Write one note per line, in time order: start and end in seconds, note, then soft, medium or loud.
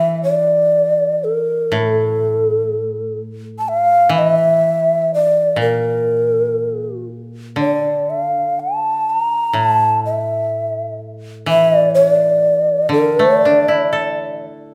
0.00 0.75 D3 soft
0.00 2.70 E3 soft
0.00 0.24 D4 soft
0.00 0.50 E4 soft
0.00 0.75 A4 soft
0.00 0.21 E5 medium
0.23 1.26 D5 medium
1.24 1.77 A#4 medium
1.72 4.61 A2 medium
1.72 3.21 A4 medium
3.59 3.70 A5 medium
3.68 4.20 F5 loud
4.09 7.04 E3 medium
4.18 4.29 D#5 medium
4.29 5.11 E5 medium
5.14 5.57 D5 medium
5.56 7.57 A#2 medium
5.61 7.05 A#4 medium
7.56 10.51 D3 soft
7.61 8.12 D5 medium
8.10 8.61 F5 medium
8.60 9.11 A5 medium
9.10 9.56 A#5 medium
9.53 12.43 A2 medium
9.53 10.04 A5 medium
10.06 10.96 E5 medium
11.46 14.45 E3 medium
11.46 11.78 E5 loud
11.78 11.93 D5 loud
11.95 12.09 C#5 medium
12.09 12.88 D5 medium
12.89 14.74 D3 soft
12.89 13.40 A#4 medium
13.19 14.74 A3 soft
13.40 14.41 D5 medium
13.45 14.74 D4 soft
13.68 14.74 E4 soft
13.93 14.74 A4 soft